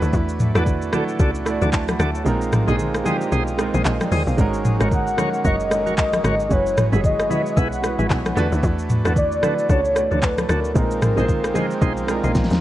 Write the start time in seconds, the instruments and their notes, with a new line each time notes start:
Already playing: harmonium E3 A3 B3 D4 F#4, grand piano A3 D4 E4 F#4 B4
0.02 log drum bass D2, shaker
0.14 log drum bass E2, kick, shaker
0.29 shaker
0.40 mid tom, high conga, shaker
0.54 log drum bass E2, grand piano A3 D4 E4 F#4 B4, tonewheel organ F#4 A4 D5, cross-stick, shaker
0.66 kick, low conga, shaker
0.82 shaker
0.92 grand piano A3 D4 E4 F#4 A4, tonewheel organ F#4 A4 D5, cross-stick, high conga, low conga, shaker
1.09 shaker
1.20 log drum bass C#2, tonewheel organ F#4 A4 D5, kick, shaker
1.35 shaker
1.45 grand piano A3 D4 E4 F#4 D5, cross-stick, shaker
1.61 log drum bass D2, tonewheel organ F#4 A4 D5, high conga, shaker
1.73 grand piano E5 A5, kick, clap, shaker
1.88 grand piano F#5 B5, cross-stick, high conga, shaker
1.99 log drum bass D2, tonewheel organ F#4 A4 D5, grand piano E5 A5, cross-stick, low conga, shaker
2.15 grand piano C#5 F#5, shaker
2.25 log drum bass A#1, harmonium D#3 G#3 A#3 C4 F4, grand piano G#3 C4 D#4 F4 A#4, shaker
2.42 shaker
2.53 cross-stick, mid tom, high conga, shaker
2.66 log drum bass A#1, grand piano G#3 C4 D#4 F4 G#4, tonewheel organ G#4 C5 D#5, shaker
2.79 low conga, shaker
2.94 cross-stick, shaker
3.04 grand piano G#3 C4 D4 F4 G4, tonewheel organ G#4 C5 D#5, high conga, low conga, shaker
3.12 grand piano D#4
3.21 shaker
3.32 log drum bass B1, tonewheel organ G#4 C5 D#5, shaker
3.47 shaker
3.57 grand piano G#3 C4 D#4 F4 A#4, cross-stick, shaker
3.74 log drum bass A#1, tonewheel organ G#4 C5 D#5, high conga, shaker
3.85 log drum bass A#1, grand piano A#4 D#5, clap, shaker
4.01 grand piano D5 G5, cross-stick, high conga, shaker
4.12 log drum bass D#2, tonewheel organ G#4 C5 D#5, open hi-hat, low conga, shaker
4.27 log drum bass B1, grand piano C5 F5, shaker
4.37 log drum bass G#1, grand piano G#3 C#4 D#4 F#4 A#4, harmonium G#3 A#3 C#4 F#4, kick, shaker
4.54 shaker
4.65 mid tom, high conga, shaker
4.79 log drum bass G#1, grand piano G#3 C#4 D#4 F#4 A#4, tonewheel organ F#4 A#4 C#5, cross-stick, shaker
4.91 soft synth lead F#5, kick, low conga, shaker
5.07 shaker
5.17 grand piano G#3 C#4 D#4 F#4 A#4, tonewheel organ F#4 A#4 C#5, cross-stick, high conga, low conga, shaker
5.34 shaker
5.44 log drum bass F#1, tonewheel organ F#4 A#4 C#5, soft synth lead D#5, kick, shaker
5.60 shaker
5.70 grand piano G#3 C#4 D#4 F#4 A4, cross-stick, shaker
5.80 grand piano A#4
5.86 log drum bass G#1, tonewheel organ F#4 A#4 C#5, high conga, shaker
5.98 soft synth lead D#5, kick, clap, shaker
6.13 cross-stick, high conga, shaker
6.24 log drum bass G#1, tonewheel organ F#4 A#4 C#5, cross-stick, low conga, shaker
6.40 shaker
6.49 log drum bass F#1, harmonium E3 B3, grand piano G#3 C#4 E4 F#4 B4, soft synth lead C#5, kick, shaker
6.66 shaker
6.77 cross-stick, mid tom, high conga, shaker
6.92 log drum bass F#1, grand piano G#3 C#4 E4 F#4 G#4, tonewheel organ E4 G#4 B4, shaker
7.04 soft synth lead D#5, kick, low conga, shaker
7.19 cross-stick, shaker
7.29 grand piano G#3 C#4 E4 F#4 C#5, tonewheel organ E4 G#4 B4, high conga, low conga, shaker
7.46 shaker
7.57 log drum bass B1, tonewheel organ E4 G#4 B4, soft synth lead F#5, kick, shaker
7.72 shaker
7.82 grand piano G#3 C#4 E4 F#4 B4, cross-stick, shaker
7.99 log drum bass G#1, tonewheel organ E4 G#4 B4, high conga, shaker
8.10 log drum bass B1, kick, clap, shaker
8.25 cross-stick, high conga, shaker
8.35 log drum bass E2, grand piano A3 D4 E4 F#4 B4, harmonium A3 D4, tonewheel organ D4 F#4 A4, low conga, shaker
8.52 log drum bass D2, shaker
8.63 log drum bass E2, kick, shaker
8.79 shaker
8.90 mid tom, high conga, shaker
9.04 log drum bass E2, grand piano A3 D4 E4 F#4 B4, tonewheel organ D4 F#4 A4, cross-stick, shaker
9.16 soft synth lead D5, kick, low conga, shaker
9.32 shaker
9.42 grand piano A3 D4 E4 F#4 B4, tonewheel organ D4 F#4 A4, cross-stick, high conga, low conga, shaker
9.59 shaker
9.69 log drum bass C#2, tonewheel organ D4 F#4 A4, soft synth lead C#5, kick, shaker
9.85 shaker
9.95 grand piano A3 D4 E4 F#4 D5, cross-stick, shaker
10.11 log drum bass D2, tonewheel organ D4 F#4 A4, high conga, shaker
10.23 soft synth lead B4, kick, clap, shaker
10.38 cross-stick, high conga, shaker
10.49 log drum bass D2, tonewheel organ D4 F#4 A4, soft synth lead A#4, cross-stick, low conga, shaker
10.65 shaker
10.74 log drum bass A#1, harmonium D#3 G#3 A#3 C4 F4, grand piano G#3 C4 D#4 F4 A#4, kick, shaker
10.91 shaker
11.02 cross-stick, mid tom, high conga, shaker
11.16 log drum bass A#1, grand piano G#3 C4 D#4 F4 C5, tonewheel organ D#4 G#4 C5, shaker
11.29 kick, low conga, shaker
11.44 cross-stick, shaker
11.54 grand piano G#3 C4 D#4 F4 A#4, tonewheel organ D#4 G#4 C5, high conga, low conga, shaker
11.71 shaker
11.81 log drum bass B1, tonewheel organ D#4 G#4 C5, kick, shaker
11.97 high conga, shaker
12.07 grand piano G#3 C4 D4 F4 A#4, cross-stick, shaker
12.15 grand piano D#4
12.24 log drum bass A#1, tonewheel organ D#4 G#4 C5, high conga, shaker
12.35 log drum bass A#1, kick, snare, shaker
12.44 snare
12.50 log drum bass D#2, snare, high conga, shaker